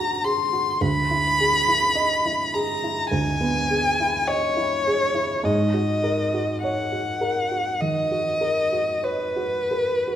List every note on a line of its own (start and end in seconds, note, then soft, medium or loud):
0.00 0.77 D2 soft
0.00 0.53 F#4 soft
0.00 0.24 G#4 soft
0.00 0.13 F#5 soft
0.00 0.26 A#5 medium
0.24 0.70 G#4 soft
0.24 0.82 C6 medium
0.53 0.81 F#4 soft
0.80 3.08 D2 soft
0.80 2.55 B5 medium
1.11 1.57 E4 soft
1.40 1.86 G#4 soft
1.68 2.14 E4 soft
1.95 2.42 D#5 soft
2.26 2.71 E4 soft
2.54 3.00 G#4 soft
2.54 3.09 A#5 medium
2.84 3.30 E4 soft
3.10 5.43 D2 soft
3.10 4.29 G#5 medium
3.41 3.88 B3 soft
3.70 4.18 G#4 soft
4.00 4.47 E4 soft
4.28 5.47 C#5 medium
4.28 4.76 D#5 soft
4.57 5.05 E4 soft
4.87 5.35 G#4 soft
5.14 5.46 E4 soft
5.44 7.76 G#2 soft
5.44 6.62 D#5 medium
5.74 6.22 F#4 soft
6.04 6.51 A#4 soft
6.34 6.81 F#4 soft
6.63 7.11 C#5 soft
6.63 7.82 F#5 medium
6.92 7.40 F#4 soft
7.21 7.69 A#4 soft
7.51 8.00 F#4 soft
7.81 8.30 D#3 soft
7.81 9.05 D#5 medium
8.11 8.60 F#4 soft
8.41 8.91 A#4 soft
8.72 9.24 F#4 soft
9.03 10.16 B4 medium
9.03 9.57 C#5 soft
9.36 9.94 F#4 soft
9.71 10.16 A#4 soft
10.07 10.16 F#4 soft